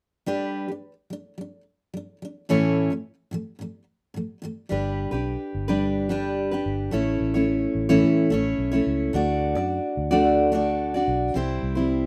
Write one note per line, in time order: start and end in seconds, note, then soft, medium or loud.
0.26 0.67 G3 medium
0.26 0.69 D4 medium
0.26 0.70 G4 medium
0.26 0.70 B4 medium
0.68 0.91 G3 soft
0.68 0.93 D4 soft
1.10 1.33 G3 soft
1.10 1.34 D4 medium
1.38 1.61 G3 soft
1.38 1.62 D4 medium
1.94 2.16 G3 medium
1.94 2.18 D4 medium
2.22 2.44 G3 medium
2.22 2.46 D4 medium
2.49 2.89 A2 medium
2.49 2.90 E3 medium
2.49 2.91 A3 medium
2.49 2.91 C#4 medium
2.49 2.92 E4 medium
2.49 2.92 C#5 medium
2.90 3.13 A2 soft
2.90 3.14 A3 soft
3.31 3.54 A2 medium
3.31 3.55 E3 medium
3.31 3.56 A3 medium
3.59 3.82 A2 soft
3.59 3.83 E3 medium
3.59 3.83 A3 medium
4.14 4.37 A2 medium
4.14 4.38 E3 medium
4.14 4.39 A3 medium
4.42 4.65 A2 medium
4.42 4.66 E3 medium
4.42 4.66 A3 medium
4.69 5.06 G1 medium
4.69 5.12 G3 medium
4.69 5.12 D4 medium
4.69 5.11 G4 medium
4.69 5.10 B4 medium
5.11 5.35 B1 medium
5.11 5.68 D4 soft
5.11 5.68 G4 soft
5.11 5.67 B4 soft
5.55 6.61 G1 medium
5.68 6.08 G3 medium
5.68 6.09 D4 medium
5.68 6.10 G4 medium
5.68 6.10 B4 medium
6.09 6.51 G3 medium
6.09 6.51 D4 medium
6.09 6.52 G4 medium
6.09 6.50 B4 medium
6.51 6.92 D4 soft
6.51 6.93 G4 soft
6.51 6.93 B4 medium
6.66 6.88 G1 medium
6.91 7.16 A1 medium
6.91 7.33 A3 medium
6.91 7.34 C#4 medium
6.91 7.34 E4 medium
6.91 7.33 C#5 medium
7.21 7.66 A1 medium
7.34 7.90 A3 soft
7.34 7.89 C#4 soft
7.34 7.88 E4 soft
7.34 7.88 C#5 soft
7.75 7.98 A1 medium
7.89 8.32 A2 medium
7.89 8.32 E3 medium
7.89 8.29 A3 medium
7.89 8.31 C#4 medium
7.89 8.31 E4 medium
7.89 8.31 C#5 medium
8.03 8.26 A2 loud
8.30 8.54 A1 medium
8.30 8.72 A3 medium
8.30 8.72 C#4 medium
8.30 8.72 E4 medium
8.30 8.70 C#5 medium
8.58 8.81 B1 medium
8.72 9.12 A3 soft
8.72 9.14 C#4 soft
8.72 9.14 E4 medium
8.72 9.13 C#5 medium
8.87 9.09 C#2 medium
9.13 9.56 D2 loud
9.13 9.55 A3 medium
9.13 9.56 D4 medium
9.13 9.56 F#4 medium
9.13 9.54 D5 medium
9.55 9.79 F#2 medium
9.55 10.11 D4 soft
9.55 10.10 F#4 soft
9.55 10.10 D5 soft
9.97 11.04 D2 medium
10.11 10.53 D3 medium
10.11 10.51 A3 medium
10.11 10.52 D4 medium
10.11 10.53 F#4 medium
10.11 10.52 D5 medium
10.52 10.94 A3 medium
10.52 10.94 D4 medium
10.52 10.94 F#4 medium
10.52 10.93 D5 medium
10.94 11.35 D4 soft
10.94 11.36 F#4 soft
10.94 11.35 D5 soft
11.08 11.30 B1 medium
11.34 11.58 C2 medium
11.34 11.76 G3 medium
11.34 11.76 C4 medium
11.34 11.75 E4 medium
11.34 11.74 C5 medium
11.63 12.06 C2 medium
11.75 12.06 G3 soft
11.75 12.06 C4 soft
11.75 12.06 E4 soft
11.75 12.06 C5 soft